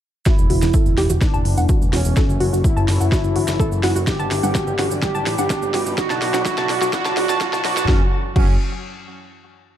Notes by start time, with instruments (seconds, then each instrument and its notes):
0.25 synth drone F#2 E3, synth stab E3 B3 E4, analog polysynth E4, analog synth pad E4 B4 G5 B5, synth arpeggio sound F#4, kick, snare, riser, cabasa
0.39 analog synth bass E1, cabasa
0.50 analog synth bass E1, synth arpeggio sound F#4, open hi-hat, mid tom
0.62 analog synth bass E1, synth stab E3 B3 E4, snare, cabasa
0.74 synth arpeggio sound A4, kick, cabasa
0.86 analog synth bass E1, cabasa
0.98 analog synth bass E1, synth arpeggio sound G4, snare, open hi-hat
1.10 analog synth bass E1, synth arpeggio sound F#4, mid tom, cabasa
1.21 analog polysynth D4, kick, snare, cabasa
1.34 analog synth bass E1, synth arpeggio sound A5, cabasa
1.45 analog synth bass F#1, open hi-hat
1.57 analog synth bass E1, synth arpeggio sound F#5, cabasa
1.69 synth arpeggio sound F#4, kick, mid tom, cabasa
1.81 analog synth bass E1, cabasa
1.93 analog synth bass E1, analog polysynth C#4, synth arpeggio sound F#4, snare, open hi-hat
2.05 analog synth bass E1, cabasa
2.16 synth stab F#3 C#4 F#4, analog synth pad F#4 C#5 A5 C#6, synth arpeggio sound A4, kick, snare, cabasa
2.29 analog synth bass F#1, mid tom, cabasa
2.40 analog synth bass F#1, synth arpeggio sound F#4, open hi-hat
2.53 analog synth bass F#1, synth stab F#3 C#4 F#4, synth arpeggio sound F#4, cabasa
2.64 analog polysynth E4, kick, cabasa
2.77 analog synth bass F#1, synth arpeggio sound A5, cabasa
2.88 analog synth bass F#1, snare, open hi-hat, mid tom
3.00 analog synth bass F#1, synth arpeggio sound F#5, cabasa
3.12 synth arpeggio sound F#4, kick, snare, cabasa
3.24 analog synth bass F#1, cabasa
3.36 analog synth bass G1, synth arpeggio sound F#4, open hi-hat
3.47 analog synth bass F#1, snare, mid tom, cabasa
3.60 synth arpeggio sound A4, kick, cabasa
3.72 analog synth bass F#1, cabasa
3.83 analog synth bass F#1, synth arpeggio sound F#4, snare, open hi-hat
3.96 analog synth bass F#1, synth arpeggio sound F#4, cabasa
4.07 synth stab G3 D4 G4, analog polysynth G4, analog synth pad D5 G5 B5 D6, kick, snare, cabasa
4.19 analog synth bass G1, synth arpeggio sound A5, cabasa
4.31 analog synth bass G1, snare, open hi-hat
4.43 analog synth bass G1, synth stab G3 D4 G4, synth arpeggio sound F#5, cabasa
4.55 synth arpeggio sound F#4, kick, snare, cabasa
4.67 analog synth bass G1, mid tom, cabasa
4.79 analog synth bass G1, synth arpeggio sound F#4, snare, open hi-hat
4.91 analog synth bass G1, cabasa
5.02 synth stab G3 D4 G4, analog polysynth G4, kick, snare, cabasa
5.15 analog synth bass G1, synth arpeggio sound A5, cabasa
5.26 analog synth bass A1, snare, open hi-hat, mid tom
5.38 analog synth bass G1, synth stab G3 D4 G4, synth arpeggio sound F#5, cabasa
5.50 synth arpeggio sound F#4, kick, snare, cabasa
5.62 analog synth bass G1, cabasa
5.74 analog synth bass G1, synth arpeggio sound F#4, snare, open hi-hat
5.86 analog synth bass G1, mid tom, cabasa
5.98 synth stab F#3 D4 F#4, analog polysynth F#4, analog synth pad F#4 D5, kick, snare, cabasa
6.10 analog synth bass B1, synth arpeggio sound A5, snare, cabasa
6.21 analog synth bass B1, snare, open hi-hat
6.34 analog synth bass B1, synth stab F#3 D4 F#4, synth arpeggio sound F#5, snare, cabasa
6.45 synth stab F#3 D4 F#4, analog polysynth F#4, kick, snare, cabasa
6.57 analog synth bass B1, synth arpeggio sound A5, snare, cabasa
6.69 analog synth bass B1, snare, open hi-hat
6.81 analog synth bass B1, synth stab F#3 D4 F#4, synth arpeggio sound F#5, snare, cabasa
6.93 synth stab F#3 D4 F#4, analog polysynth F#4, kick, snare, cabasa
7.05 analog synth bass B1, synth arpeggio sound A5, snare, mid tom, cabasa
7.17 analog synth bass C#2, synth stab F#3 D4 F#4, analog polysynth F#4, snare, open hi-hat
7.29 analog synth bass B1, synth arpeggio sound A5, snare, cabasa
7.40 synth stab F#3 D4 F#4, analog polysynth F#4, kick, snare, cabasa
7.53 analog synth bass B1, synth arpeggio sound A5, snare, cabasa
7.64 analog synth bass B1, synth stab F#3 D4 F#4, analog polysynth F#4, snare, open hi-hat, mid tom
7.77 analog synth bass B1, synth arpeggio sound A5, snare, cabasa
7.88 analog synth bass F#1, synth stab F#3 C#4 F#4, analog polysynth C#4, synth arpeggio sound F#4, kick, snare
8.36 analog synth bass F#1, synth stab F#3 C#4 F#4, analog polysynth C#4, synth arpeggio sound F#4, kick, crash